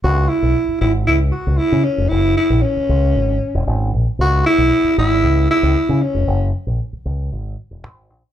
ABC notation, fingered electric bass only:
X:1
M:4/4
L:1/16
Q:1/4=115
K:C#dor
V:1 name="Fingered electric bass" clef=bass
C,,2 z B,,, z2 G,,,2 C,,2 z C,, z C, z ^E,,, | F,,,2 z A,,, z2 C,,2 G,,,2 z E,,, G,,,2 A,,, z | C,,2 z B,,, z2 G,,,2 C,,2 z C,, z C, z ^E,,, | F,,,2 z A,,, z2 C,,2 G,,,2 z E,,, G,,,2 A,,, z |]